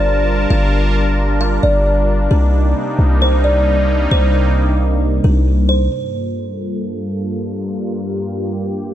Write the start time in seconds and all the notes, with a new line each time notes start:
Already playing: G1 G3 D4 F4 A#4 D5 A5
0.50 G1 F5
1.41 F5
1.63 G1 D5
2.31 C2 C3 G3 A#3 D#4 A#4
2.99 C2
3.22 C5
3.44 D5
4.11 C2 C5
5.24 C2 A#4
5.69 C5
5.92 G2 G3 A#3 F4 A4
7.72 G4